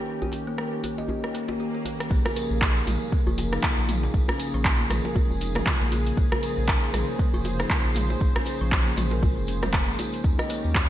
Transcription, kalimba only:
0.22 G4
0.47 A#3
0.58 A#4
0.73 D#4
0.83 A#3
0.98 D#5
1.09 C#4
1.34 A#3
1.60 G4
1.75 G4
1.85 A#3
2.11 A#3
2.25 A#4
2.36 F3
3.12 A#3
3.27 F3
3.52 D#4
3.63 F4
4.29 C#4
4.54 F3
4.65 F4
4.79 A#3
4.90 F3
5.05 A#4
5.16 G#3
5.41 D#4
5.66 F4
5.81 A#3
5.92 A#3
6.17 A#3
6.32 A#4
6.43 F3
7.19 A#3
7.34 F3
7.60 D#4
7.70 F4
8.36 C#4
8.61 F3
8.72 F4
8.86 A#3
8.97 F3
9.12 A#4
9.22 G#3
9.48 C#4
9.74 A#3
9.88 G#3
9.99 D#4
10.24 D#4
10.39 D#5
10.50 A#3
10.75 G4

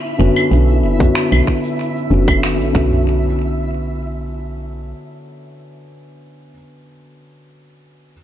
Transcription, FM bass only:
0.19 F#1
0.51 B1
0.83 F#1
1.00 B1
1.32 B1
2.10 F#1
2.59 A1
2.75 B1

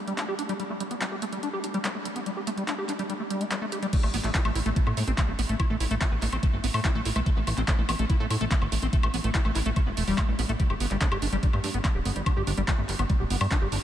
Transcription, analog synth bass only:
4.03 A1
4.14 A1
4.24 A1
4.45 A1
4.55 A1
4.66 A1
4.87 A2
4.97 A2
5.08 A1
5.28 G1
5.39 A1
5.49 A1
5.70 A1
5.80 A1
5.91 A1
6.12 A1
6.22 A1
6.33 A1
6.53 G1
6.64 A1
6.74 A2
6.95 A1
7.05 A1
7.16 B1
7.37 A1
7.47 A1
7.58 A1
7.78 A1
7.89 A1
7.99 A1
8.20 A2
8.30 A2
8.41 A1
8.62 G1
8.72 A1
8.83 A1
9.03 A1
9.14 A1
9.24 A1
9.45 A1
9.55 A1
9.66 A1
9.87 G1
9.97 E1
10.08 E1
10.28 A1
10.39 A1
10.49 A1
10.70 G1
10.81 G1
10.91 G1
11.12 G1
11.22 G1
11.33 G1
11.53 G2
11.64 G2
11.74 G1
11.95 D1
12.05 G1
12.16 G1
12.37 G1
12.47 G1
12.58 G1
12.78 G1
12.89 G1
12.99 G1
13.20 D1
13.30 G1
13.41 G2
13.62 G1
13.72 G1

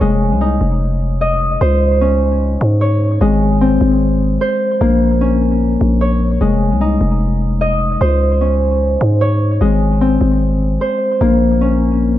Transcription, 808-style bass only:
0.01 F1
0.32 C2
0.61 F1
1.61 C#2
2.61 G#2
3.21 G#1
3.81 G#1
4.81 A#1
5.81 A#1
6.41 F1
6.72 C2
7.01 F1
8.01 C#2
9.01 G#2
9.61 G#1
10.21 G#1
11.21 A#1

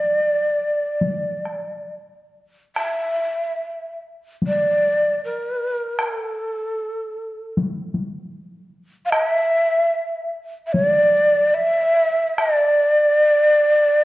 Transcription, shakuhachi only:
Already playing: D5
2.76 E5
4.47 D5
5.24 A#4
6.02 A4
9.05 F5
9.10 D#5
9.23 E5
10.67 E5
10.73 C#5
10.87 D5
11.54 E5
12.39 D5

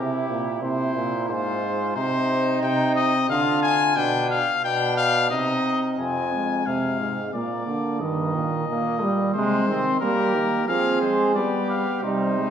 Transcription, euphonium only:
Already playing: C3
0.29 A#2
0.62 C3
0.96 A#2
1.29 G#2
1.96 C3
2.63 C3
3.29 D3
3.96 B2
4.64 B2
5.31 C3
5.99 F2
6.67 C3
7.00 G#2
7.34 A#2
7.67 D3
8.01 G2
8.34 A#2
8.68 A#2
9.35 C3
9.68 D#3
10.01 G3
10.35 D#3
10.68 F3
11.02 G#3
11.35 G3
12.03 C3

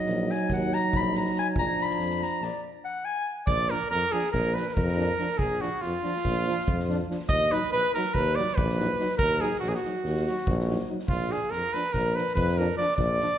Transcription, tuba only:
0.06 A#1
0.50 D#2
0.93 A#1
1.55 A#1
1.98 F2
2.42 A#1
3.46 A#1
3.90 F2
4.34 A#1
4.77 F2
5.39 A#1
5.82 F2
6.24 A#1
6.67 F2
7.29 D#2
7.71 A#1
8.14 D#2
8.58 A#1
9.19 D#2
9.62 A#1
10.04 D#2
10.47 A#1
11.08 A#1
11.51 F2
11.94 A#1
12.36 F2
12.98 A#1

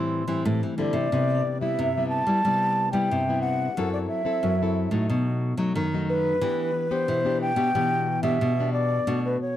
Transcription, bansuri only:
Already playing: C6
0.79 D5
1.61 E5
2.09 A5
2.92 G5
3.42 F#5
3.93 D5
4.08 E5
6.09 B4
6.92 C5
7.41 G5
8.23 E5
8.73 D5
9.25 B4
9.41 C#5

